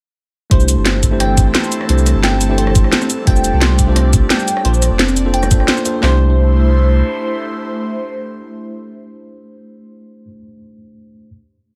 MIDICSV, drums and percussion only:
0, 0, Header, 1, 2, 480
1, 0, Start_track
1, 0, Tempo, 344828
1, 710, Time_signature, 4, 2, 24, 8
1, 16356, End_track
2, 0, Start_track
2, 0, Title_t, "Drums"
2, 711, Note_on_c, 9, 42, 92
2, 712, Note_on_c, 9, 36, 120
2, 836, Note_on_c, 9, 69, 26
2, 850, Note_off_c, 9, 42, 0
2, 851, Note_off_c, 9, 36, 0
2, 951, Note_off_c, 9, 69, 0
2, 951, Note_on_c, 9, 42, 70
2, 951, Note_on_c, 9, 69, 61
2, 1091, Note_off_c, 9, 42, 0
2, 1091, Note_off_c, 9, 69, 0
2, 1191, Note_on_c, 9, 38, 118
2, 1191, Note_on_c, 9, 42, 90
2, 1330, Note_off_c, 9, 38, 0
2, 1330, Note_off_c, 9, 42, 0
2, 1432, Note_on_c, 9, 36, 63
2, 1432, Note_on_c, 9, 42, 69
2, 1432, Note_on_c, 9, 69, 63
2, 1571, Note_off_c, 9, 42, 0
2, 1571, Note_off_c, 9, 69, 0
2, 1572, Note_off_c, 9, 36, 0
2, 1672, Note_on_c, 9, 37, 50
2, 1672, Note_on_c, 9, 42, 102
2, 1812, Note_off_c, 9, 37, 0
2, 1812, Note_off_c, 9, 42, 0
2, 1913, Note_on_c, 9, 36, 104
2, 1913, Note_on_c, 9, 42, 72
2, 1913, Note_on_c, 9, 69, 58
2, 2052, Note_off_c, 9, 36, 0
2, 2052, Note_off_c, 9, 42, 0
2, 2052, Note_off_c, 9, 69, 0
2, 2153, Note_on_c, 9, 38, 114
2, 2153, Note_on_c, 9, 42, 99
2, 2278, Note_on_c, 9, 69, 28
2, 2292, Note_off_c, 9, 38, 0
2, 2292, Note_off_c, 9, 42, 0
2, 2391, Note_off_c, 9, 69, 0
2, 2391, Note_on_c, 9, 42, 69
2, 2391, Note_on_c, 9, 69, 59
2, 2516, Note_on_c, 9, 37, 50
2, 2531, Note_off_c, 9, 42, 0
2, 2531, Note_off_c, 9, 69, 0
2, 2631, Note_on_c, 9, 42, 86
2, 2655, Note_off_c, 9, 37, 0
2, 2757, Note_on_c, 9, 69, 26
2, 2770, Note_off_c, 9, 42, 0
2, 2872, Note_off_c, 9, 69, 0
2, 2872, Note_on_c, 9, 37, 35
2, 2872, Note_on_c, 9, 42, 68
2, 2872, Note_on_c, 9, 69, 55
2, 3011, Note_off_c, 9, 37, 0
2, 3011, Note_off_c, 9, 42, 0
2, 3011, Note_off_c, 9, 69, 0
2, 3112, Note_on_c, 9, 38, 115
2, 3112, Note_on_c, 9, 42, 91
2, 3251, Note_off_c, 9, 38, 0
2, 3251, Note_off_c, 9, 42, 0
2, 3352, Note_on_c, 9, 42, 69
2, 3352, Note_on_c, 9, 69, 58
2, 3491, Note_off_c, 9, 42, 0
2, 3491, Note_off_c, 9, 69, 0
2, 3591, Note_on_c, 9, 42, 95
2, 3717, Note_on_c, 9, 37, 57
2, 3731, Note_off_c, 9, 42, 0
2, 3831, Note_on_c, 9, 42, 69
2, 3831, Note_on_c, 9, 69, 59
2, 3833, Note_on_c, 9, 36, 105
2, 3856, Note_off_c, 9, 37, 0
2, 3956, Note_on_c, 9, 37, 35
2, 3971, Note_off_c, 9, 42, 0
2, 3971, Note_off_c, 9, 69, 0
2, 3972, Note_off_c, 9, 36, 0
2, 4072, Note_on_c, 9, 38, 123
2, 4072, Note_on_c, 9, 42, 95
2, 4096, Note_off_c, 9, 37, 0
2, 4198, Note_on_c, 9, 37, 34
2, 4198, Note_on_c, 9, 69, 26
2, 4211, Note_off_c, 9, 38, 0
2, 4211, Note_off_c, 9, 42, 0
2, 4311, Note_off_c, 9, 69, 0
2, 4311, Note_on_c, 9, 42, 67
2, 4311, Note_on_c, 9, 69, 56
2, 4337, Note_off_c, 9, 37, 0
2, 4450, Note_off_c, 9, 42, 0
2, 4450, Note_off_c, 9, 69, 0
2, 4552, Note_on_c, 9, 42, 88
2, 4553, Note_on_c, 9, 36, 122
2, 4678, Note_on_c, 9, 69, 25
2, 4691, Note_off_c, 9, 42, 0
2, 4692, Note_off_c, 9, 36, 0
2, 4792, Note_off_c, 9, 69, 0
2, 4792, Note_on_c, 9, 42, 66
2, 4792, Note_on_c, 9, 69, 61
2, 4932, Note_off_c, 9, 42, 0
2, 4932, Note_off_c, 9, 69, 0
2, 5031, Note_on_c, 9, 38, 122
2, 5031, Note_on_c, 9, 42, 90
2, 5171, Note_off_c, 9, 38, 0
2, 5171, Note_off_c, 9, 42, 0
2, 5271, Note_on_c, 9, 42, 64
2, 5271, Note_on_c, 9, 69, 57
2, 5272, Note_on_c, 9, 36, 68
2, 5410, Note_off_c, 9, 42, 0
2, 5410, Note_off_c, 9, 69, 0
2, 5412, Note_off_c, 9, 36, 0
2, 5513, Note_on_c, 9, 37, 52
2, 5513, Note_on_c, 9, 42, 96
2, 5652, Note_off_c, 9, 37, 0
2, 5652, Note_off_c, 9, 42, 0
2, 5751, Note_on_c, 9, 42, 70
2, 5751, Note_on_c, 9, 69, 61
2, 5752, Note_on_c, 9, 36, 114
2, 5890, Note_off_c, 9, 42, 0
2, 5890, Note_off_c, 9, 69, 0
2, 5891, Note_off_c, 9, 36, 0
2, 5990, Note_on_c, 9, 38, 127
2, 5990, Note_on_c, 9, 42, 91
2, 6117, Note_on_c, 9, 69, 26
2, 6129, Note_off_c, 9, 38, 0
2, 6129, Note_off_c, 9, 42, 0
2, 6232, Note_off_c, 9, 69, 0
2, 6232, Note_on_c, 9, 42, 64
2, 6232, Note_on_c, 9, 69, 55
2, 6357, Note_on_c, 9, 37, 49
2, 6371, Note_off_c, 9, 42, 0
2, 6371, Note_off_c, 9, 69, 0
2, 6471, Note_on_c, 9, 42, 83
2, 6497, Note_off_c, 9, 37, 0
2, 6597, Note_on_c, 9, 69, 27
2, 6610, Note_off_c, 9, 42, 0
2, 6711, Note_off_c, 9, 69, 0
2, 6711, Note_on_c, 9, 37, 32
2, 6711, Note_on_c, 9, 42, 65
2, 6711, Note_on_c, 9, 69, 57
2, 6850, Note_off_c, 9, 37, 0
2, 6850, Note_off_c, 9, 42, 0
2, 6850, Note_off_c, 9, 69, 0
2, 6950, Note_on_c, 9, 38, 119
2, 6950, Note_on_c, 9, 42, 87
2, 7076, Note_on_c, 9, 69, 29
2, 7089, Note_off_c, 9, 38, 0
2, 7089, Note_off_c, 9, 42, 0
2, 7190, Note_off_c, 9, 69, 0
2, 7190, Note_on_c, 9, 42, 62
2, 7190, Note_on_c, 9, 69, 59
2, 7329, Note_off_c, 9, 42, 0
2, 7329, Note_off_c, 9, 69, 0
2, 7429, Note_on_c, 9, 42, 92
2, 7555, Note_on_c, 9, 37, 55
2, 7555, Note_on_c, 9, 69, 26
2, 7558, Note_on_c, 9, 60, 58
2, 7568, Note_off_c, 9, 42, 0
2, 7668, Note_off_c, 9, 69, 0
2, 7668, Note_on_c, 9, 42, 66
2, 7668, Note_on_c, 9, 69, 59
2, 7671, Note_on_c, 9, 36, 105
2, 7694, Note_off_c, 9, 37, 0
2, 7698, Note_off_c, 9, 60, 0
2, 7796, Note_on_c, 9, 37, 34
2, 7808, Note_off_c, 9, 42, 0
2, 7808, Note_off_c, 9, 69, 0
2, 7810, Note_off_c, 9, 36, 0
2, 7908, Note_on_c, 9, 38, 127
2, 7908, Note_on_c, 9, 42, 88
2, 7935, Note_off_c, 9, 37, 0
2, 8035, Note_on_c, 9, 37, 32
2, 8035, Note_on_c, 9, 69, 27
2, 8047, Note_off_c, 9, 38, 0
2, 8047, Note_off_c, 9, 42, 0
2, 8148, Note_off_c, 9, 69, 0
2, 8148, Note_on_c, 9, 42, 63
2, 8148, Note_on_c, 9, 69, 57
2, 8174, Note_off_c, 9, 37, 0
2, 8288, Note_off_c, 9, 42, 0
2, 8288, Note_off_c, 9, 69, 0
2, 8391, Note_on_c, 9, 38, 112
2, 8391, Note_on_c, 9, 39, 87
2, 8531, Note_off_c, 9, 38, 0
2, 8531, Note_off_c, 9, 39, 0
2, 16356, End_track
0, 0, End_of_file